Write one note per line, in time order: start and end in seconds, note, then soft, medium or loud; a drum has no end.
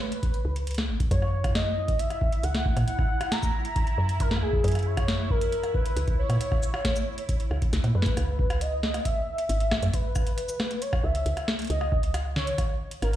0.01 0.67 B4 medium
0.12 closed hi-hat medium
0.23 kick loud
0.23 closed hi-hat medium
0.34 closed hi-hat soft
0.45 0.91 C#2 medium
0.56 closed hi-hat medium
0.67 closed hi-hat medium
0.71 closed hi-hat medium
0.74 cross-stick soft
0.74 snare loud
0.74 closed hi-hat soft
0.78 closed hi-hat soft
0.89 1.04 G#1 loud
1.00 kick loud
1.00 closed hi-hat medium
1.11 1.94 F#2 loud
1.11 8.18 E4 medium
1.11 1.52 C#5 loud
1.11 kick loud
1.11 closed hi-hat medium
1.22 cross-stick soft
1.44 kick loud
1.44 cross-stick medium
1.44 closed hi-hat medium
1.55 2.01 D#5 loud
1.55 snare loud
1.55 closed hi-hat medium
1.88 kick loud
1.88 closed hi-hat medium
1.99 2.45 E5 loud
1.99 closed hi-hat medium
2.10 cross-stick soft
2.10 closed hi-hat soft
2.21 kick loud
2.32 closed hi-hat medium
2.43 2.71 C#2 medium
2.43 2.87 F#5 loud
2.43 closed hi-hat medium
2.55 snare loud
2.55 closed hi-hat soft
2.66 kick loud
2.77 2.84 A#2 medium
2.77 cross-stick soft
2.77 closed hi-hat medium
2.88 3.33 F#5 loud
2.88 closed hi-hat medium
2.99 kick loud
2.99 cross-stick soft
3.21 cross-stick medium
3.21 closed hi-hat medium
3.32 4.19 A#5 loud
3.32 snare loud
3.32 closed hi-hat medium
3.43 kick loud
3.43 cabasa medium
3.65 closed hi-hat soft
3.76 kick loud
3.76 closed hi-hat medium
3.87 closed hi-hat soft
3.98 4.44 F#2 medium
4.09 closed hi-hat medium
4.20 4.41 A#4 loud
4.20 kick loud
4.20 closed hi-hat medium
4.31 snare loud
4.37 cross-stick soft
4.42 4.57 C#2 loud
4.42 4.88 G#4 loud
4.53 kick loud
4.64 5.47 F#2 loud
4.64 closed hi-hat medium
4.68 closed hi-hat medium
4.72 cross-stick soft
4.72 closed hi-hat soft
4.75 closed hi-hat soft
4.79 closed hi-hat soft
4.83 5.32 C#5 loud
4.83 closed hi-hat soft
4.97 kick loud
4.97 cross-stick medium
4.97 closed hi-hat medium
5.08 snare loud
5.08 closed hi-hat medium
5.30 5.74 A#4 loud
5.30 kick loud
5.41 closed hi-hat medium
5.52 closed hi-hat medium
5.63 cross-stick soft
5.63 closed hi-hat soft
5.74 6.15 B4 loud
5.74 kick loud
5.86 closed hi-hat medium
5.96 6.24 C#2 medium
5.96 closed hi-hat medium
6.07 kick loud
6.07 closed hi-hat soft
6.19 7.69 C#5 loud
6.30 6.37 A#2 medium
6.30 cross-stick soft
6.30 closed hi-hat medium
6.41 closed hi-hat medium
6.52 kick loud
6.52 cross-stick soft
6.63 cabasa medium
6.74 cross-stick medium
6.85 kick loud
6.85 snare loud
6.85 closed hi-hat medium
6.96 closed hi-hat soft
6.96 cabasa medium
7.18 closed hi-hat medium
7.29 kick loud
7.29 closed hi-hat medium
7.40 closed hi-hat soft
7.51 7.66 C#2 medium
7.51 cross-stick soft
7.62 kick loud
7.62 closed hi-hat medium
7.73 7.80 C#2 medium
7.73 snare medium
7.73 closed hi-hat medium
7.84 7.91 A#2 medium
7.84 closed hi-hat soft
7.95 8.10 F#2 loud
7.95 8.63 B4 loud
8.02 kick loud
8.02 snare loud
8.02 closed hi-hat medium
8.17 9.00 C#2 loud
8.17 cross-stick medium
8.17 closed hi-hat medium
8.39 kick loud
8.50 cross-stick medium
8.50 closed hi-hat medium
8.61 9.07 D#5 loud
8.61 closed hi-hat medium
8.83 snare loud
8.94 cross-stick medium
8.94 closed hi-hat medium
9.05 9.95 E5 loud
9.05 kick medium
9.05 closed hi-hat medium
9.38 closed hi-hat medium
9.49 9.77 G#1 medium
9.49 closed hi-hat medium
9.60 closed hi-hat soft
9.71 kick medium
9.71 cross-stick medium
9.71 snare loud
9.82 9.90 F#2 medium
9.82 closed hi-hat medium
9.93 10.83 B4 loud
9.93 kick medium
9.93 closed hi-hat medium
10.16 kick loud
10.16 cross-stick medium
10.16 cabasa medium
10.27 closed hi-hat medium
10.38 closed hi-hat medium
10.49 cabasa medium
10.60 cross-stick medium
10.60 snare loud
10.71 closed hi-hat medium
10.82 11.05 C#5 loud
10.82 closed hi-hat medium
10.93 kick loud
10.93 cross-stick medium
11.04 11.25 C#2 medium
11.04 11.48 E5 loud
11.15 closed hi-hat medium
11.26 11.33 C#2 medium
11.26 closed hi-hat medium
11.37 cross-stick medium
11.37 closed hi-hat soft
11.48 snare loud
11.59 closed hi-hat medium
11.62 closed hi-hat soft
11.65 closed hi-hat soft
11.67 12.53 C#2 loud
11.67 closed hi-hat soft
11.70 12.11 D#5 loud
11.70 closed hi-hat medium
11.81 cross-stick medium
11.92 kick loud
12.03 closed hi-hat medium
12.14 cross-stick medium
12.14 closed hi-hat medium
12.36 12.77 C#5 loud
12.36 snare loud
12.47 closed hi-hat medium
12.58 kick medium
12.58 cross-stick medium
12.58 closed hi-hat medium
12.91 closed hi-hat medium
13.02 13.16 G#1 medium
13.02 13.16 A#4 loud
13.02 cross-stick soft
13.02 closed hi-hat medium